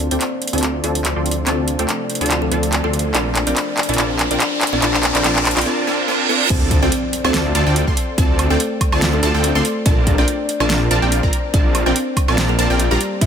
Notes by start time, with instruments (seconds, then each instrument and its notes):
Already playing: ambient pad C3 F3 D4, harp A4 D5 F5, riser
0.00 harp C5
0.11 detuned saw bass D2, supersaw synth C4 F4 A4 D5 G5, kalimba C4 C5, harp D5, closed hi-hat
0.21 harp C5, clap, closed hi-hat
0.32 harp D5
0.42 harp A4, closed hi-hat
0.47 closed hi-hat
0.53 detuned saw bass D2, supersaw synth C4 F4 A4 D5 A5, kalimba C4 C5, harp F5, closed hi-hat
0.58 closed hi-hat
0.63 harp C5, clap, closed hi-hat
0.74 harp D5
0.84 detuned saw bass D2, supersaw synth C4 F4 A4 D5 A5, harp C5, closed hi-hat
0.95 harp D5, closed hi-hat
1.05 harp A4, clap, closed hi-hat
1.16 detuned saw bass D2, supersaw synth C4 F4 A4 D5 C6, harp F5
1.26 harp C5, closed hi-hat
1.31 closed hi-hat
1.37 harp D5
1.46 detuned saw bass D2, kalimba C4 C5, supersaw synth C4 F4 A4 D5 A5, harp C5, clap, closed hi-hat
1.58 harp D5
1.67 harp A4, closed hi-hat
1.79 detuned saw bass D2, kalimba A3 A4, supersaw synth C4 F4 A4 D5 G5, harp F5, closed hi-hat
1.89 harp C5, clap, closed hi-hat
2.00 harp D5
2.10 harp C5, closed hi-hat
2.15 closed hi-hat
2.21 detuned saw bass D2, supersaw synth C4 F4 A4 D5 A5, harp D5, closed hi-hat
2.26 closed hi-hat
2.30 harp A4, clap, closed hi-hat
2.42 kalimba A3 A4, harp F5
2.51 detuned saw bass D2, supersaw synth C4 F4 A4 D5 A5, harp C5, closed hi-hat
2.63 harp D5, closed hi-hat
2.72 harp C5, clap, closed hi-hat
2.84 detuned saw bass D2, kalimba A3 A4, supersaw synth C4 F4 A4 D5 C6, harp D5
2.93 harp A4, closed hi-hat
2.99 closed hi-hat
3.05 harp F5
3.14 detuned saw bass A#1, supersaw synth C4 F4 A#4 D5 A5, ambient pad D4, kalimba D4 D5, harp A#4, clap, closed hi-hat
3.26 harp C5
3.35 harp A#4, clap, closed hi-hat
3.47 detuned saw bass A#1, supersaw synth C4 F4 A#4 D5 G5, kalimba D4 D5, harp C5, closed hi-hat
3.56 harp A4, clap, closed hi-hat
3.68 harp D5
3.77 harp A#4, clap, closed hi-hat
3.83 closed hi-hat
3.89 detuned saw bass A#1, supersaw synth C4 F4 A#4 D5 A5, kalimba D4 D5, harp C5, closed hi-hat
3.94 closed hi-hat
3.98 detuned saw bass A#1, supersaw synth C4 F4 A#4 D5 A5, kalimba D4 D5, harp A#4, clap, closed hi-hat
4.10 harp C5
4.19 harp A#4, clap, closed hi-hat
4.31 detuned saw bass A#1, supersaw synth C4 F4 A#4 D5 G5, kalimba D4 D5, harp C5, closed hi-hat
4.40 harp A4, clap, closed hi-hat
4.52 harp D5
4.61 harp A#4, clap, closed hi-hat
4.67 closed hi-hat
4.73 detuned saw bass A#1, supersaw synth C4 F4 A#4 D5 A5, kalimba D4 D5, harp C5
4.82 detuned saw bass A#1, supersaw synth C4 F4 A#4 D5 A5, kalimba D4 D5, harp A#4, clap, closed hi-hat
4.94 harp C5, clap
5.03 harp A#4, clap, closed hi-hat
5.15 detuned saw bass A#1, supersaw synth C4 F4 A#4 D5 G5, kalimba D4 D5, harp C5, clap, closed hi-hat
5.24 detuned saw bass A#1, supersaw synth C4 F4 A#4 D5 A5, kalimba D4 D5, harp A#4, clap, closed hi-hat
5.36 harp C5, clap
5.45 harp A#4, clap, closed hi-hat
5.51 closed hi-hat
5.56 detuned saw bass A#1, supersaw synth C4 F4 A#4 D5 G5, kalimba D4 D5, harp C5, clap, closed hi-hat
5.61 closed hi-hat
5.66 supersaw synth C4 F4 A#4 D5 A5, reverse cymbal
5.87 supersaw synth C4 F4 A#4 D5 A5
6.08 supersaw synth C4 F4 A#4 D5 A5
6.29 supersaw synth C4 F4 A#4 D5 A5
6.50 detuned saw bass D2, supersaw synth C4 F4 A4 D5, kalimba C4 C5, harp A4, synth pluck A5, kick, closed hi-hat, crash, impact
6.61 harp F5
6.71 harp C5, kick, closed hi-hat
6.82 detuned saw bass D2, kalimba C4 C5, supersaw synth C4 F4 A4 D5 G5, harp D5, synth pluck G5
6.92 harp C5, closed hi-hat
7.04 harp D5
7.13 harp A4, closed hi-hat
7.24 detuned saw bass D2, supersaw synth C4 F4 A4 D5 A5, kalimba C4 C5, harp F5, synth pluck A5, high woodblock
7.34 harp C5, snare, closed hi-hat
7.45 harp D5
7.55 detuned saw bass D2, supersaw synth C4 F4 A4 D5 A5, harp C5, synth pluck A5, closed hi-hat
7.66 detuned saw bass D2, supersaw synth C4 F4 A4 D5 G5, harp D5, synth pluck G5
7.76 harp A4, closed hi-hat
7.87 detuned saw bass D2, supersaw synth C4 F4 A4 D5 C6, harp F5, synth pluck C6, kick
7.97 harp C5, closed hi-hat
8.08 harp D5
8.18 detuned saw bass D2, supersaw synth C4 F4 A4 D5 A5, kalimba C4 C5, harp C5, synth pluck A5, kick, closed hi-hat
8.29 harp D5
8.39 harp A4, closed hi-hat, high woodblock
8.50 detuned saw bass D2, kalimba A3 A4, supersaw synth C4 F4 A4 D5 G5, harp F5, synth pluck G5
8.60 harp C5, closed hi-hat
8.71 harp D5
8.81 harp C5, kick, closed hi-hat, high woodblock
8.92 detuned saw bass D2, supersaw synth C4 F4 A4 D5 A5, harp D5, synth pluck A5, high woodblock
9.02 harp A4, snare, closed hi-hat
9.13 kalimba A3 A4, harp F5
9.23 detuned saw bass D2, supersaw synth C4 F4 A4 D5 A5, harp C5, synth pluck A5, closed hi-hat
9.34 detuned saw bass D2, supersaw synth C4 F4 A4 D5 G5, harp D5, synth pluck G5
9.44 harp C5, closed hi-hat
9.55 detuned saw bass D2, kalimba A3 A4, supersaw synth C4 F4 A4 D5 C6, harp D5, synth pluck C6
9.65 harp A4, closed hi-hat
9.76 harp F5
9.86 detuned saw bass A#1, supersaw synth C4 F4 A#4 D5 A5, kalimba D4 D5, harp A#4, synth pluck A5, kick, closed hi-hat
9.97 harp C5
10.07 harp A#4, kick, closed hi-hat
10.18 detuned saw bass A#1, supersaw synth C4 F4 A#4 D5 G5, kalimba D4 D5, harp C5, synth pluck G5
10.28 harp A4, closed hi-hat
10.39 harp D5
10.49 harp A#4, closed hi-hat
10.60 detuned saw bass A#1, supersaw synth C4 F4 A#4 D5 A5, kalimba D4 D5, harp C5, synth pluck A5, high woodblock
10.70 harp A#4, snare, closed hi-hat
10.81 harp C5
10.91 detuned saw bass A#1, supersaw synth C4 F4 A#4 D5 A5, harp A4, synth pluck A5, closed hi-hat
11.02 detuned saw bass A#1, supersaw synth C4 F4 A#4 D5 G5, harp D5, synth pluck G5
11.12 harp A#4, closed hi-hat
11.23 detuned saw bass A#1, supersaw synth C4 F4 A#4 D5 A#5, harp C5, synth pluck A#5, kick
11.33 harp A#4, closed hi-hat
11.44 harp C5
11.54 detuned saw bass A#1, supersaw synth C4 F4 A#4 D5 A5, kalimba D4 D5, harp A4, synth pluck A5, kick, closed hi-hat
11.65 harp D5
11.75 harp A#4, closed hi-hat, high woodblock
11.86 detuned saw bass A#1, supersaw synth C4 F4 A#4 D5 G5, kalimba C4 C5, harp C5, synth pluck G5
11.96 harp A#4, closed hi-hat
12.07 harp C5
12.17 harp A4, kick, closed hi-hat, high woodblock
12.28 detuned saw bass A#1, supersaw synth C4 F4 A#4 D5 A5, harp D5, synth pluck A5, high woodblock
12.38 harp A#4, snare, closed hi-hat
12.49 kalimba A#3 A#4, harp C5
12.58 detuned saw bass A#1, supersaw synth C4 F4 A#4 D5 A5, harp F5, synth pluck A5, closed hi-hat
12.70 detuned saw bass A#1, supersaw synth C4 F4 A#4 D5 G5, synth pluck G5, harp A5
12.79 harp D5, closed hi-hat
12.91 detuned saw bass A#1, kalimba G3 G4, supersaw synth C4 F4 A#4 D5 A#5, harp C5, synth pluck A#5
13.00 harp A4, closed hi-hat
13.12 harp F5
13.21 detuned saw bass F1, supersaw synth C4 F4 A4 E5 G5, kalimba E4 E5, harp G4, synth pluck G5, kick, closed hi-hat